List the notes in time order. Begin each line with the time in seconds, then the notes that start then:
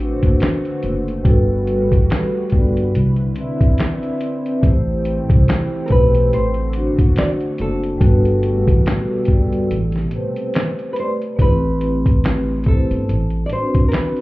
Already playing: A1 D3 A3 C4 D4 F#4
0.00 F#4 B4
0.09 C5
0.23 F#1, kick, closed hi-hat
0.40 snare, clap, closed hi-hat
0.65 closed hi-hat
0.83 F#1, closed hi-hat
1.08 closed hi-hat
1.23 G1 G3 F#4 A4 B4, kick, closed hi-hat
1.29 B4
1.67 closed hi-hat
1.92 A1, kick, closed hi-hat
2.10 snare, clap, closed hi-hat
2.50 G1 G3 F#4 A4, kick, closed hi-hat
2.55 D5
2.77 closed hi-hat
2.94 C2 D3 C4 E4, closed hi-hat
3.16 closed hi-hat
3.35 C4 B4 D5, closed hi-hat
3.41 E5
3.61 kick, closed hi-hat
3.78 snare, clap, closed hi-hat
4.03 closed hi-hat
4.19 C4 B4, closed hi-hat
4.23 D5 E5
4.46 closed hi-hat
4.61 A1 E3 A3 E4 G4, kick, closed hi-hat
4.67 C5
5.05 closed hi-hat
5.30 C2, kick, closed hi-hat
5.48 snare, clap, closed hi-hat
5.86 A3 A#4, closed hi-hat
5.90 B1 E4 G4 B4, kick
5.95 B4
6.15 closed hi-hat
6.32 A1 D3 F#4 C5, closed hi-hat
6.54 closed hi-hat
6.73 D4 F#4, closed hi-hat
6.79 C5
6.99 F#1, kick, closed hi-hat
7.16 D5, snare, clap, closed hi-hat
7.41 closed hi-hat
7.58 F#1 A4, closed hi-hat
7.83 closed hi-hat
7.98 G1 B2 G3 A3 F#4 A4, kick, closed hi-hat
8.04 B4
8.25 closed hi-hat
8.43 closed hi-hat
8.68 A1, kick, closed hi-hat
8.86 snare, clap, closed hi-hat
9.25 G1 G3 F#4, kick, closed hi-hat
9.30 A4 D5
9.53 closed hi-hat
9.70 A1 C3, closed hi-hat
9.92 snare, closed hi-hat
10.10 A3 G4 B4, closed hi-hat
10.16 C5
10.36 closed hi-hat
10.54 snare, clap, closed hi-hat
10.79 closed hi-hat
10.93 A3 B4, closed hi-hat
10.97 G4 B4 C5 D5
11.22 closed hi-hat
11.37 A1 A3 E4, kick, closed hi-hat
11.41 G4 B4
11.49 C4
11.81 closed hi-hat
12.06 kick, closed hi-hat
12.24 snare, clap, closed hi-hat
12.64 A3 E4, kick, closed hi-hat
12.68 G4 A4 C5
12.91 G1, closed hi-hat
13.09 A1, closed hi-hat
13.30 closed hi-hat
13.46 D4 D5, closed hi-hat
13.51 F#4 B4 C5
13.61 C4
13.74 kick, closed hi-hat
13.88 A#4, closed hi-hat
13.94 B4, snare, clap
14.17 closed hi-hat